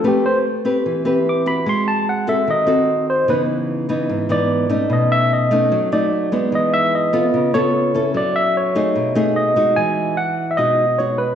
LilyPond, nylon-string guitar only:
\new Staff \with { instrumentName = "Nylon-string guitar" } { \time 4/4 \key e \major \tempo 4 = 148 << { <c' g' b'>4 r8 <c' g' b'>4 <c' g' b'>4 <c' fis'>8~ | <c' fis'>4. <bis fis' a'>4 <bis fis' a'>4. | <e b dis'>4. <e b dis'>4 <e b dis'>4 <a cis' dis'>8~ | <a cis' dis'>4. <a cis' dis'>4 <a dis'>4 <gis b dis'>8~ |
<gis b dis'>4. <b f' a'>4 <b eis' a'>4 <cis' e' a'>8~ | <cis' e' a'>4. <a dis' gis'>4 <a dis' gis'>4 <gis dis' fis'>8~ | <gis dis' fis'>4 r4 <gis dis' fis'>8 r8 <gis dis' fis'>8 r8 | } \\ { a2 e2 | gis2 dis2 | cis2 gis,2 | b,2 fis2 |
e2 cis2 | fis2 b,2 | e2 b,2 | } >> }